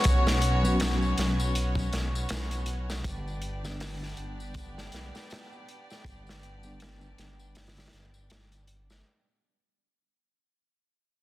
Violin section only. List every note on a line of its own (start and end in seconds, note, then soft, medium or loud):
0.00 3.01 B3 medium
0.00 3.01 C#4 medium
0.00 3.01 F#4 medium
0.00 3.00 C#5 medium
3.05 9.01 B3 medium
3.05 9.01 D4 medium
3.05 9.01 G4 medium
3.05 9.01 D5 medium